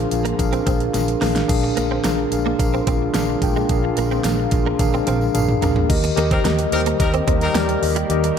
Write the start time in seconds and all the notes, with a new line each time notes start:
Already playing: A#2 D3 F3 G#3 A#3 D4 F4 G#4 A#4 C5 F5
0.11 A#1 D4 G#4 A#4 F5, closed hi-hat, tambourine
0.25 A#3, closed hi-hat
0.38 A#1 D4 G#4 A#4 F5, muted clean electric guitar stroke, kick, closed hi-hat, tambourine
0.53 C4, closed hi-hat, tambourine
0.66 A#1 C4 D4 G#4 A#4 F5, kick, closed hi-hat, tambourine
0.80 closed hi-hat
0.94 A#1 D4 G#4 A#4 F5, snare, closed hi-hat, tambourine
1.08 closed hi-hat
1.20 A#1 A#3 D4 G#4 A#4 F5, snare, open hi-hat, tambourine
1.36 snare, closed hi-hat, tambourine
1.48 A#1 A#2 D3 F3 G#3 A#3 D4 F4 G#4 A#4 F5, kick, closed hi-hat, crash, tambourine
1.63 muted clean electric guitar stroke
1.76 A#1 A#3 D4 G#4 A#4 F5, closed hi-hat, tambourine
1.91 C4
2.04 A#1 A#3 D4 G#4 A#4 F5, snare, closed hi-hat, tambourine
2.18 muted clean electric guitar stroke
2.32 A#1 D4 G#4 A#4 F5, closed hi-hat, tambourine
2.46 A#3
2.59 A#1 D4 G#4 A#4 F5, muted clean electric guitar stroke, kick, closed hi-hat, tambourine
2.74 C4, tambourine
2.87 A#1 C4 D4 G#4 A#4 F5, kick, closed hi-hat, tambourine
3.14 A#1 A#3 D4 G#4 A#4 F5, snare, closed hi-hat, tambourine
3.29 muted clean electric guitar stroke
3.42 A#1 D4 G#4 A#4 G5, kick, closed hi-hat, tambourine
3.56 G#3, tambourine
3.69 A#1 A#2 D4 G#4 A#4 F5, kick, closed hi-hat, tambourine
3.84 muted clean electric guitar stroke
3.97 A#1 A#3 D4 G#4 A#4 F5, closed hi-hat, tambourine
4.11 C4, tambourine
4.24 A#1 A#3 D4 G#4 A#4 F5, snare, closed hi-hat, tambourine
4.39 muted clean electric guitar stroke
4.51 A#1 D4 G#4 A#4 F5, kick, closed hi-hat, tambourine
4.66 A#3
4.79 A#1 D4 G#4 A#4 F5, muted clean electric guitar stroke, kick, closed hi-hat, high tom, tambourine
4.94 C4, tambourine
5.06 A#1 C4 D4 G#4 A#4 F5, closed hi-hat, mid tom, tambourine
5.21 tambourine
5.34 A#1 D4 G#4 A#4 F5, closed hi-hat, mid tom, tambourine
5.49 mid tom
5.61 A#1 A#3 D4 G#4 A#4 F5, closed hi-hat, floor tom, tambourine
5.76 floor tom
5.89 D#2 D#3 G3 A#3 G4 A#4 D#5, kick, closed hi-hat, crash
6.04 muted clean electric guitar stroke, closed hi-hat
6.16 D#2 A#3 G4 A#4 D#5, closed hi-hat
6.31 G3 C4 D#4 A#4, kick, closed hi-hat
6.44 D#2 A#3 G4 A#4 D#5, snare, closed hi-hat, tambourine
6.59 muted clean electric guitar stroke, closed hi-hat
6.72 D#2 G3 D#4 G4 A#4 C5, closed hi-hat
6.86 A#3, closed hi-hat
6.99 D#2 G3 D#4 G4 A#4 D#5, muted clean electric guitar stroke, kick, closed hi-hat
7.14 C4, closed hi-hat
7.27 D#2 C4 G4 A#4 D#5, kick, closed hi-hat
7.41 G3 D#4 A#4, closed hi-hat
7.55 D#2 A#3 G4 A#4 D5, snare, closed hi-hat, tambourine
7.68 muted clean electric guitar stroke, closed hi-hat
7.82 D#2 G4 A#4 D#5, open hi-hat
7.96 G3, closed hi-hat
8.10 D#2 D#3 G4 A#4 D#5, closed hi-hat
8.24 muted clean electric guitar stroke, closed hi-hat